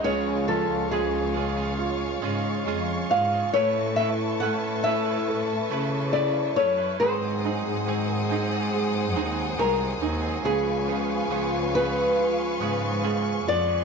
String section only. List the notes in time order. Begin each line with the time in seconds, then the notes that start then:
Already playing: G#3
0.06 C#5 F5 C#6
3.53 B4 E5 A5
7.00 C5 F#5 G#5 D#6
10.44 B4 F5 C#6